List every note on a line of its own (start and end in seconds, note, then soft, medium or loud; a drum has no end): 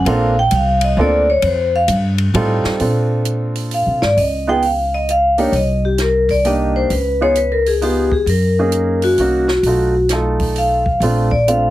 0.05 0.50 A#1 medium
0.05 0.33 A#3 medium
0.05 0.34 C4 medium
0.05 0.34 D4 medium
0.05 0.34 F4 medium
0.05 0.34 A4 medium
0.05 ride medium
0.10 0.37 F5 medium
0.39 0.53 G5 loud
0.51 0.96 C2 medium
0.51 hi-hat pedal medium
0.51 ride medium
0.56 0.83 F5 medium
0.81 0.98 D#5 medium
0.81 ride medium
0.97 1.41 D2 medium
0.97 1.25 A#3 medium
0.97 1.25 C4 medium
0.97 1.25 D4 medium
0.97 1.25 F4 medium
0.97 1.26 A4 medium
1.01 1.29 D5 medium
1.30 1.44 C#5 medium
1.42 1.87 F2 medium
1.42 1.73 C5 medium
1.42 ride medium
1.76 1.84 F5 loud
1.88 2.32 G2 medium
1.88 hi-hat pedal medium
1.88 ride medium
2.18 ride medium
2.34 2.62 A2 medium
2.34 2.80 G3 medium
2.34 2.78 C4 medium
2.34 2.80 D#4 medium
2.34 2.79 F4 medium
2.34 2.80 A4 medium
2.34 ride medium
2.64 muted upright bass stroke soft
2.64 snare soft
2.79 3.82 A#2 medium
2.79 4.07 C4 soft
2.79 4.08 D4 soft
2.79 4.08 F4 soft
2.79 4.08 A4 medium
2.79 open hi-hat soft
3.25 closed hi-hat soft
3.55 open hi-hat soft
3.71 4.02 F5 medium
3.71 open hi-hat soft
3.86 4.00 C3 medium
4.02 4.16 G#2 medium
4.02 4.17 D5 medium
4.02 snare soft
4.17 5.49 C#2 medium
4.17 4.46 D#5 medium
4.17 open hi-hat soft
4.47 4.61 B3 medium
4.47 4.61 D#4 medium
4.47 4.61 F4 medium
4.47 4.62 G#4 medium
4.47 4.63 G5 loud
4.62 4.93 F5 medium
4.62 open hi-hat soft
4.94 5.08 D#5 medium
5.09 5.38 F5 loud
5.09 closed hi-hat medium
5.38 5.52 A#3 medium
5.38 5.52 D4 medium
5.38 5.52 D#4 medium
5.38 5.52 G4 medium
5.38 5.54 C#5 medium
5.38 open hi-hat soft
5.52 6.86 C2 medium
5.52 5.84 D#5 medium
5.52 open hi-hat soft
5.85 5.99 G4 medium
5.98 6.30 A#4 medium
5.98 snare soft
5.98 closed hi-hat soft
6.29 6.45 D5 medium
6.29 kick medium
6.29 open hi-hat soft
6.45 6.90 A#3 medium
6.45 6.91 D4 medium
6.45 6.91 D#4 medium
6.45 6.91 G4 medium
6.45 6.75 D#5 medium
6.45 open hi-hat soft
6.76 6.90 C5 medium
6.90 8.23 C#2 medium
6.90 7.20 B4 medium
6.90 open hi-hat soft
7.21 7.35 B3 medium
7.21 7.35 D#4 medium
7.21 7.35 F4 medium
7.21 7.35 G#4 medium
7.21 7.36 C#5 loud
7.35 7.51 B4 medium
7.35 closed hi-hat soft
7.52 7.66 A#4 medium
7.66 7.82 G#4 medium
7.66 open hi-hat soft
7.81 8.09 B3 medium
7.81 8.09 D#4 soft
7.81 8.09 F4 soft
7.81 8.12 G4 medium
7.81 8.10 G#4 medium
7.81 open hi-hat soft
8.12 8.27 G#4 medium
8.12 kick soft
8.26 9.14 F#2 medium
8.26 9.00 A#4 medium
8.26 open hi-hat soft
8.59 9.16 A#3 medium
8.59 9.17 C#4 medium
8.59 9.16 D#4 medium
8.59 9.17 G#4 medium
8.72 closed hi-hat medium
9.02 10.06 F#4 medium
9.02 open hi-hat soft
9.18 9.61 C2 medium
9.18 9.46 A#3 medium
9.18 9.47 C#4 medium
9.18 9.47 D#4 medium
9.18 9.47 F#4 medium
9.18 open hi-hat soft
9.48 snare soft
9.63 10.97 B1 medium
9.63 9.93 A3 medium
9.63 9.93 D#4 soft
9.63 open hi-hat soft
9.68 9.93 F4 medium
9.68 9.93 F#4 medium
10.09 10.81 A3 medium
10.09 10.81 D#4 medium
10.09 10.81 F4 medium
10.09 snare soft
10.09 closed hi-hat medium
10.13 10.81 A4 medium
10.40 kick medium
10.40 open hi-hat soft
10.56 11.29 F5 medium
10.56 open hi-hat soft
10.86 kick soft
11.00 11.70 A#1 medium
11.00 11.29 A3 medium
11.00 11.29 C4 medium
11.00 11.29 D4 medium
11.00 11.30 F4 medium
11.00 open hi-hat soft
11.31 11.46 D5 medium
11.31 kick medium
11.48 11.70 A3 soft
11.48 11.70 C4 soft
11.48 11.70 D4 soft
11.48 11.70 F4 medium
11.48 11.70 F5 medium
11.48 closed hi-hat medium